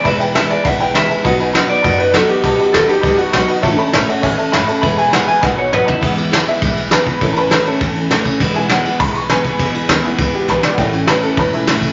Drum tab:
CC |--------|--------|--------|--------|
RD |xxxxxxxx|xxxxxxxx|xxxxxxxx|xxxxxxxx|
SD |--o---o-|--o---o-|--o---o-|--o---o-|
T2 |--------|--------|--------|--------|
FT |--------|--------|--------|--------|
BD |o---o---|o---o---|o---o---|o---o---|

CC |--------|x-------|--------|--------|
RD |xxxx----|-xxxxxxx|xxxxxxxx|xxxxxxxx|
SD |--o-o---|--o---o-|--o---o-|--o---o-|
T2 |------o-|--------|--------|--------|
FT |-------o|--------|--------|--------|
BD |o---o---|o---o--o|o---o--o|o---o--o|

CC |--------|--------|
RD |xxxxxx--|xxxxxxxx|
SD |--o---oo|--o---o-|
T2 |--------|--------|
FT |--------|--------|
BD |o---o---|o---o--o|